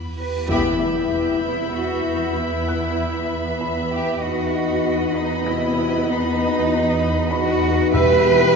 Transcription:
Already playing: E2 B5, reverse cymbal
0.17 G4 B4
0.48 E2 B3 E4 G4 B4 E5 B5 E6 G6, impact
0.80 E5
1.43 C3 E4
1.74 E4 F#4 B6
2.35 B3 E4
2.68 F#6
3.34 C7
3.61 B5
3.91 E4 G4
4.20 E2 B3 D#4 F#4 B4 D#5 B5
5.14 B3 D#4
5.45 C3 E4 A#6
6.07 B3 D#4
7.30 D#4 F#4 B4 B5
7.92 E2 B3 G4 B4 E5 G5 E6 B6 C7

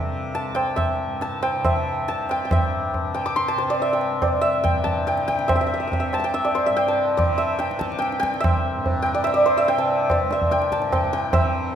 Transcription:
Already playing: C2 G2 C3 A4 C5 D5 E5 G5 A5
0.35 A5, tabla te
0.50 C2
0.55 G5, tabla na
0.76 E5, tabla na, tabla ge
1.04 G2
1.21 A5, tabla te
1.43 G5, tabla na
1.57 C3
1.65 E5, tabla na, tabla ge
2.08 C3 A5, tabla te
2.29 G5, tabla na
2.45 G5
2.51 G2 E5, tabla na, tabla ge
2.94 tabla tin, tabla ge
3.04 C3
3.14 G5, tabla na
3.26 D6
3.36 C6, tabla te
3.48 A5
3.56 C3 C5, tabla te
3.70 D5
3.80 E5, tabla tin
3.93 G5
4.01 tabla na
4.08 C2
4.22 D5, tabla na, tabla ge
4.41 E5
4.61 G2 G5, tabla na, tabla ge
4.84 A5, tabla ge
5.07 G5, tabla te
5.12 C3
5.18 tabla te
5.28 G5, tabla ke
5.39 tabla te
5.48 E5, tabla na, tabla ge
5.55 E5
5.61 C3 E5
5.67 E5
5.74 E5
5.80 E5
5.87 E5
5.92 E5, tabla tin, tabla ge
6.00 E5
6.13 A5, tabla na
6.17 C2 A5
6.24 G5
6.34 E5, tabla te
6.45 D5
6.55 C5, tabla te
6.66 G2 E5
6.76 G5, tabla tin
6.88 A5
7.17 C3 D5, tabla na, tabla ge
7.38 E5
7.59 G5, tabla te
7.71 C3, tabla te
7.79 A5, tabla ke
7.92 tabla te
7.99 G5, tabla te
8.12 tabla te
8.20 C2 G5, tabla ke
8.34 tabla te
8.40 E5, tabla na, tabla ge
8.76 G2
8.86 tabla tin, tabla ge
9.02 G5
9.06 tabla na
9.14 D5
9.24 C3 E5, tabla na
9.34 D5
9.46 C5, tabla na
9.57 E5
9.68 G5, tabla tin
9.77 C3 A5
10.10 D5, tabla na, tabla ge
10.27 C2, tabla te
10.32 E5
10.42 tabla ge
10.51 G5, tabla te
10.62 tabla te
10.72 A5, tabla ke
10.78 G2
10.82 tabla te
10.92 G5, tabla na, tabla ge
11.13 G5, tabla te
11.30 C3 E5, tabla na, tabla ge

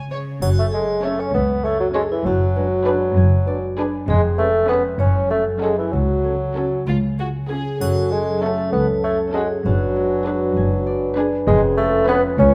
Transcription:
Already playing: G#1 C#3 G#3 C#4 G#4
0.11 C#3 C#5
0.41 F#1 F#2 F#3 F#4, triangle
0.59 A3 A4
0.72 G#3 A3 C#4 G#4 A4
1.03 A3 C#4 A4 C#5
1.20 C#4 C#5
1.34 C#2 B3 A4 B4
1.65 A3 C#4 A4 C#5
1.79 F#3 F#4
1.94 G#3 C#4 G#4 A4 C#5
2.12 E3 E4
2.25 F#1 F#2 F#3 F#4
2.56 G#3 D4 B4
2.86 D4 G#4 B4
3.16 F#1 F#2 G#4
3.46 D4 B4 D5
3.77 D4 G#4 B4
4.08 F1 F2 G#3 G#4
4.38 G#3 A3 C#4 A4 B4
4.68 B3 C#4 G#4 B4
4.98 F#1 F#2 C#4 C#5
5.29 F#3 A3 C#4 A4
5.61 G#3 C#4 F#4 G#4 A4
5.78 E3 E4
5.93 C#2 C#3 F#3 F#4
6.24 C#4 A4
6.55 C#4 F#4 A4
6.86 C#2 C#3 F4
7.18 C#4 F4 F#4 G#4
7.49 C#4 F4 G#4
7.79 F#1 F#2 F#3 C#4 F#4 A4, triangle
8.11 F#3 G#3 G#4
8.42 A3 C#4 F#4 A4
8.72 C#2 B3 F#4 B4
9.04 A3 A4 C#5
9.34 G#3 C#4 F#4 G#4 A4
9.64 F#1 F#2 F#3 D4 F#4 B4
9.96 G#3
10.26 D4 G#4 B4
10.56 F#1 F#2 G#4
10.86 D5
11.16 D4 G#4 B4
11.47 F1 F2 G#3 C#4 G#4
11.77 G#3 A3 A4
12.08 B3 C#4 G#4 B4
12.38 C#2 C#3 C#4 F4 C#5

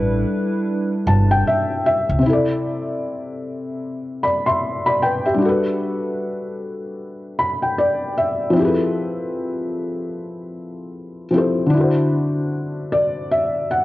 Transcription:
Already playing: A1 G3 D4 E4 A4 B4
1.07 G1 A5
1.31 G5
1.47 E5
1.86 E5
2.09 C#2
2.19 C3 C4
2.26 E4 A4
2.33 D5
4.23 D5 B5
4.46 E5 C6
4.86 D5 B5
5.02 B4 G5
5.25 G4 E5
5.34 G3 D4
5.42 F#4 A4
5.49 B4
7.39 B5
7.62 G5
7.78 D5
8.18 E5
8.50 F3 C4
8.56 E4 G4
8.62 G#4 B4
8.68 A4
11.31 F3 C4 E4
11.35 G4 A4 C5
11.66 D3 D4
11.74 E4 F#4
11.81 C5
12.92 D5
13.31 E5
13.71 F#5

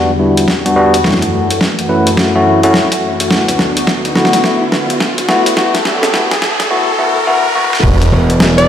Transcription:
Already playing: E2 D3 G3 B3 D4 F#4, riser
0.19 G3 B3 D4 E4
0.37 closed hi-hat
0.48 kick, snare
0.66 G3 B3 D4 F#4, closed hi-hat
0.76 G3 B3 D4 F#4
0.94 closed hi-hat
1.04 F#2 E3 A3 C#4 E4 F#4, kick, snare
1.08 snare
1.11 snare
1.14 snare
1.19 snare, closed hi-hat
1.51 closed hi-hat
1.61 kick, snare
1.79 closed hi-hat
1.89 A3 C#4 E4 B4
2.07 closed hi-hat
2.17 A3 C#4 E4 F#4, kick, snare
2.35 A3 C#4 E4 F#4
2.63 A3 C#4 E4 F#4, closed hi-hat
2.74 kick, snare
2.92 closed hi-hat
3.20 closed hi-hat
3.30 D2 D3 A3 B3 E4 F#4, kick, snare
3.48 closed hi-hat
3.59 snare
3.77 closed hi-hat
3.87 kick, snare
4.05 closed hi-hat
4.15 A3 B3 E4 F#4, snare
4.25 snare
4.33 snare, closed hi-hat
4.44 A3 B3 E4 F#4, kick, snare
4.72 snare
4.90 closed hi-hat
5.00 kick, snare
5.18 closed hi-hat
5.29 A3 B3 E4 F#4, snare
5.46 closed hi-hat
5.57 G2 F#3 A3 B3 E4 F#4 A4, kick, snare
5.75 snare, closed hi-hat
5.85 snare
6.03 snare, closed hi-hat
6.14 A3 B3 E4 F#4, kick, snare
6.31 snare, closed hi-hat
6.42 snare
6.60 snare, closed hi-hat
6.71 A3 B3 E4 F#4
6.99 A3 B3 E4 F#4
7.27 A3 B3 E4 F#4
7.55 A3 B3 E4 F#4, high tom
7.58 high tom
7.61 high tom
7.64 high tom
7.70 snare, high tom
7.83 E1 G3 B3 D4 F#4, kick, crash
8.02 closed hi-hat
8.12 E1
8.30 closed hi-hat
8.40 snare
8.58 D5, closed hi-hat

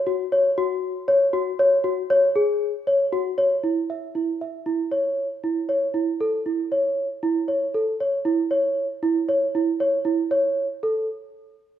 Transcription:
0.07 F#4
0.32 C#5
0.58 F#4
1.08 C#5
1.33 F#4
1.59 C#5
1.84 F#4
2.10 C#5
2.36 G#4
2.87 C#5
3.13 F#4
3.38 C#5
3.64 E4
3.90 E5
4.15 E4
4.41 E5
4.66 E4
4.92 C#5
5.44 E4
5.69 C#5
5.94 E4
6.21 A4
6.46 E4
6.72 C#5
7.23 E4
7.48 C#5
7.74 A4
8.00 C#5
8.25 E4
8.51 C#5
9.03 E4
9.29 C#5
9.55 E4
9.80 C#5
10.05 E4
10.31 C#5
10.83 A4

